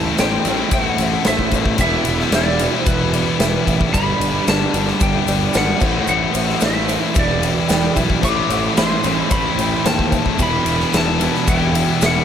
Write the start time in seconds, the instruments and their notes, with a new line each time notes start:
Already playing: overdriven electric guitar A2 E3 A3, distorted electric guitar E3, honky-tonk piano A4 C5 E5, lead electric guitar A5
0.05 distorted electric guitar A3 C4 E4
0.17 fingered electric bass A1, distorted electric guitar A2 E3 A3 C4 E4, honky-tonk piano A4 C5 D5, lead electric guitar G5, snare, ride, shaker
0.43 fingered electric bass A1, distorted electric guitar E3 A3 C4 E4, overdriven electric guitar A3, honky-tonk piano A4, snare, ride, shaker
0.47 overdriven electric guitar A2 E3, honky-tonk piano C5 G5
0.57 distorted electric guitar A3 C4 E4
0.71 fingered electric bass A1, honky-tonk piano A4 C5 E5, lead electric guitar G5, kick, ride, shaker
0.83 distorted electric guitar A3 C4 E4, lead electric guitar F#5
0.98 fingered electric bass A1, distorted electric guitar E3 A3 C4 E4, honky-tonk piano A4 C5 E5, ride, shaker
1.12 distorted electric guitar A3 C4 E4
1.24 fingered electric bass A1, distorted electric guitar A2 E3 A3 C4 E4, honky-tonk piano A4 C5 E5, lead electric guitar E5, snare, ride, shaker
1.39 kick
1.51 distorted electric guitar E3 A3 C4 E4, honky-tonk piano A4 C5 D5, kick, ride, shaker
1.66 distorted electric guitar A3 C4 E4, kick
1.78 fingered electric bass E1, overdriven electric guitar E2 B2, distorted electric guitar E3 G3 B3 E4, honky-tonk piano G4 B4 E5, lead electric guitar E5, kick, ride, shaker
1.82 overdriven electric guitar E3
1.91 distorted electric guitar G3 B3 E4
2.05 fingered electric bass E1, honky-tonk piano G4 B4 E5, ride, shaker
2.18 distorted electric guitar B3 E4, snare
2.22 distorted electric guitar G3
2.31 fingered electric bass E1, distorted electric guitar E3 G3 B3, honky-tonk piano G4 B4 E5, snare, ride, shaker
2.36 distorted electric guitar E4, lead electric guitar D5
2.59 overdriven electric guitar B2 E3, distorted electric guitar E3 G3 B3 E4, honky-tonk piano G4 B4 E5, ride, shaker
2.63 overdriven electric guitar E2
2.73 distorted electric guitar G3 B3 E4
2.78 lead electric guitar C5
2.86 fingered electric bass E1, honky-tonk piano G4 E5, lead electric guitar B4, kick, ride, shaker
2.99 distorted electric guitar G3 B3 E4
3.12 distorted electric guitar E3 G3 B3 E4, honky-tonk piano G4 B4 D5, ride, shaker
3.25 distorted electric guitar G3 B3 E4
3.38 fingered electric bass E1, distorted electric guitar E3 G3 B3 E4, honky-tonk piano G4 B4 E5, snare, ride, shaker
3.65 fingered electric bass A1, distorted electric guitar E3 G3 B3 E4, honky-tonk piano G4 B4 E5, kick, ride, shaker
3.78 distorted electric guitar G3 B3 E4, kick
3.91 fingered electric bass G1, distorted electric guitar G2 D3 G3 B3 D4, overdriven electric guitar G2 D3, honky-tonk piano G4 B4 D5, lead electric guitar B5, kick, ride, shaker
3.97 overdriven electric guitar G3
4.04 distorted electric guitar G3 B3 D4
4.20 fingered electric bass G1, honky-tonk piano G4 B4 D5, ride, shaker
4.33 distorted electric guitar G3 B3 D4
4.46 fingered electric bass G1, distorted electric guitar G2 D3 G3 B3 D4, honky-tonk piano G4 B4 D5, lead electric guitar A5, snare, ride, shaker
4.71 fingered electric bass G1, distorted electric guitar D3 G3 B3 D4, overdriven electric guitar G3, honky-tonk piano G4 B4 D5, ride, shaker
4.76 overdriven electric guitar G2 D3
4.86 distorted electric guitar G3 B3 D4, snare
5.00 fingered electric bass G1, honky-tonk piano G4 B4 D5, lead electric guitar G5, kick, ride, shaker
5.13 distorted electric guitar G3 B3 D4
5.26 fingered electric bass G1, distorted electric guitar D3 G3 B3 D4, honky-tonk piano G4 B4 D5, ride, shaker
5.40 distorted electric guitar G3 B3 D4
5.53 fingered electric bass G#1, distorted electric guitar G2 D3 G3 B3 D4, honky-tonk piano G4 B4 D5, snare, ride, shaker
5.57 lead electric guitar F#5
5.79 fingered electric bass A1, overdriven electric guitar A2 E3, distorted electric guitar A2 E3 A3 C4 E4, honky-tonk piano A4 C5 E5, kick, crash, shaker
5.84 overdriven electric guitar A3
5.93 distorted electric guitar A3 C4 E4
6.06 fingered electric bass A1, distorted electric guitar A2 E3 A3 C4 E4, lead electric guitar F#5, shaker
6.19 distorted electric guitar A3 C4 E4
6.34 fingered electric bass A1, honky-tonk piano A4 C5 E5, ride, shaker
6.47 distorted electric guitar A3 C4 E4, snare
6.60 fingered electric bass A1, distorted electric guitar A2 E3 A3 C4 E4, overdriven electric guitar A2 E3, honky-tonk piano A4 C5 E5, snare, ride, shaker
6.65 overdriven electric guitar A3, lead electric guitar E5
6.86 distorted electric guitar E3 A3 C4 E4, honky-tonk piano A4 C5 E5, snare, ride, shaker
7.00 distorted electric guitar A3 C4 E4
7.14 fingered electric bass E1, overdriven electric guitar E2 B2, distorted electric guitar E3 G3 B3 E4, honky-tonk piano G4 B4 E5, kick, ride, shaker
7.18 overdriven electric guitar E3, lead electric guitar D5
7.27 distorted electric guitar G3 B3 E4
7.40 distorted electric guitar E3 G3 B3 E4, honky-tonk piano G4 B4 G5, ride, shaker
7.54 distorted electric guitar G3 B3 E4
7.67 fingered electric bass E1, distorted electric guitar E3 G3 B3 E4, honky-tonk piano G4 B4 G5, snare, ride, shaker
7.94 fingered electric bass B1, overdriven electric guitar B2 E3, distorted electric guitar E3 G3 B3, honky-tonk piano G4 B4 E5, kick, ride, shaker
7.99 overdriven electric guitar E2, distorted electric guitar E4
8.08 distorted electric guitar G3 B3 E4, kick
8.21 fingered electric bass A1, distorted electric guitar A2 E3 A3 C4, overdriven electric guitar A2 E3, honky-tonk piano A4 C5 E5, lead electric guitar D6, kick, crash, shaker
8.25 overdriven electric guitar A3, distorted electric guitar E4
8.36 distorted electric guitar A3 C4 E4
8.50 fingered electric bass A1, honky-tonk piano A4 C5 F#5, ride, shaker
8.64 distorted electric guitar A3 C4 E4
8.76 fingered electric bass A1, distorted electric guitar A2 E3 A3 C4, honky-tonk piano A4 C5 E5, lead electric guitar C6, snare, ride, shaker
8.80 distorted electric guitar E4
9.03 fingered electric bass A1, distorted electric guitar E3 A3 C4, overdriven electric guitar E3 A3, honky-tonk piano A4 C5 E5, snare, ride, shaker
9.08 overdriven electric guitar A2, distorted electric guitar E4
9.17 distorted electric guitar A3 C4 E4, lead electric guitar B5
9.30 fingered electric bass A1, distorted electric guitar A2 E3, honky-tonk piano A4 C5 D5, lead electric guitar B5, kick, ride, shaker
9.34 distorted electric guitar A3
9.45 distorted electric guitar A3 C4 E4
9.57 fingered electric bass A1, distorted electric guitar E3 A3 C4 E4, honky-tonk piano A4 C5 G5, ride, shaker
9.70 distorted electric guitar A3 C4 E4
9.84 fingered electric bass D#2, distorted electric guitar A2 E3 A3 C4 E4, honky-tonk piano A4 C5 G5, lead electric guitar A5, snare, ride, shaker
9.99 kick
10.11 distorted electric guitar E3 A3 C4 E4, honky-tonk piano A4 C5 E5, kick, ride, shaker
10.25 distorted electric guitar A3 C4 E4, kick
10.37 fingered electric bass E1, overdriven electric guitar E2 B2, distorted electric guitar E3 G3 B3, honky-tonk piano G4 B4 E5, kick, ride, shaker
10.41 overdriven electric guitar E3, distorted electric guitar E4, lead electric guitar B5
10.50 distorted electric guitar G3 B3 E4
10.66 fingered electric bass E1, honky-tonk piano G4 B4 E5, ride, shaker
10.77 distorted electric guitar G3 B3 E4, snare
10.90 fingered electric bass E1, distorted electric guitar E3 G3 B3 E4, honky-tonk piano G4, ride, shaker
10.94 honky-tonk piano B4 E5, lead electric guitar A5, snare
11.18 overdriven electric guitar B2 E3, distorted electric guitar E3 G3 B3 E4, honky-tonk piano G4 B4, ride, shaker
11.23 overdriven electric guitar E2, honky-tonk piano E5
11.32 distorted electric guitar G3 B3 E4, snare
11.46 fingered electric bass E1, distorted electric guitar E2 B2 E3, honky-tonk piano G4 B4 E5, kick, ride, shaker
11.50 lead electric guitar G5
11.59 distorted electric guitar G3 B3 E4
11.73 distorted electric guitar E3 G3 B3 E4, honky-tonk piano G4 B4 E5, ride, shaker
11.87 distorted electric guitar G3 B3 E4
11.99 fingered electric bass E1, distorted electric guitar E3 G3 B3 E4, honky-tonk piano G4 B4 E5, snare, ride, shaker
12.06 lead electric guitar F#5